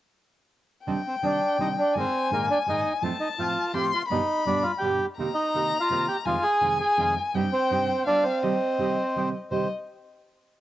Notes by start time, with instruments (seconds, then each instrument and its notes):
0.84 nylon-string guitar C3 D#3 G3 D4 G4, bandoneon C4 D4 D#4, violin G5
1.07 bandoneon C4 C5
1.22 nylon-string guitar C3 D#3 G3 D4 G4, bandoneon C4 D4 D#4
1.26 bandoneon D5
1.58 nylon-string guitar C3 D#3 G3 D4 G4, bandoneon C4 D4 D#4 D#5
1.78 bandoneon D4 D5
1.93 nylon-string guitar G#2 A#2 D#3 G#3 D#4 G#4, bandoneon G#3 A#3 D#4, violin G#5
1.99 bandoneon C4 C5
2.31 nylon-string guitar G#2 A#2 D#3 G#3 D#4 G#4, bandoneon G#3 A#3 D#4 A#4
2.50 bandoneon D4 D5
2.66 nylon-string guitar G#2 A#2 D#3 G#3 D#4 G#4, bandoneon G#3 A#3 D#4 D#5
3.02 nylon-string guitar A2 F3 A3 C4 F4, bandoneon A3 C4 F4, violin A5
3.20 bandoneon D#4 D#5
3.38 nylon-string guitar A2 F3 A3 C4 F4, bandoneon A3 C4 F4 F5
3.74 nylon-string guitar A2 F3 A3 C4 F4, bandoneon A3 C4 F4 G4 G5, violin C6
3.94 bandoneon F4 F5
4.08 nylon-string guitar G2 B2 D3 G3 B3 G4, bandoneon G3 B3 D4 D#4 D#5, violin B5
4.45 nylon-string guitar G2 B2 D3 G3 B3 G4, bandoneon G3 B3 D4 D5
4.63 bandoneon F4 F5
4.78 nylon-string guitar G2 B2 G3, bandoneon G4 G5
4.83 nylon-string guitar D3 B3 G4, bandoneon G3 B3 D4
5.18 nylon-string guitar C3 D#3 A#3 C4 G4, bandoneon A#3 C4 D#4, violin A#5
5.34 bandoneon D#4 D#5
5.54 nylon-string guitar C3 D#3 A#3 C4 G4, bandoneon A#3 C4 D#4
5.80 bandoneon F4 F5
5.89 nylon-string guitar C3 D#3 A#3 C4 G4, bandoneon A#3 C4 D#4
6.08 bandoneon G4 G5
6.25 nylon-string guitar F2 C3 D#3 G#3 C4 F4, bandoneon G#3 D#4 F4 F5, violin G#5
6.42 bandoneon G#4 G#5
6.61 nylon-string guitar F2 C3 D#3 G#3 C4 F4, bandoneon G#3 D#4 F4
6.80 bandoneon G#4 G#5
6.97 nylon-string guitar F2 C3 D#3 G#3 C4 F4, bandoneon G#3 D#4 F4
7.34 nylon-string guitar G2 C3 G3 C4 D#4 G4, bandoneon G3 C4 D#4 G4, violin G5
7.52 bandoneon C4 C5
7.70 nylon-string guitar G2 C3 G3 C4 D#4 G4, bandoneon G3 C4 D#4 G4
8.06 nylon-string guitar G3 B3 F4, bandoneon B3 D4 F4 G4 D5, violin F5
8.24 bandoneon C4 C5
8.43 nylon-string guitar C3 D#3 G3 C4 G4, bandoneon C4 D#4 G4, violin D#5
8.78 nylon-string guitar C3 D#3 G3 C4 G4, bandoneon C4 D#4 G4
9.15 nylon-string guitar C3 D#3 G3 C4 G4, bandoneon C4 D#4 G4
9.51 nylon-string guitar C3 D#3 G3 C4 G4, bandoneon C4 D#4 G4 C5, violin D#5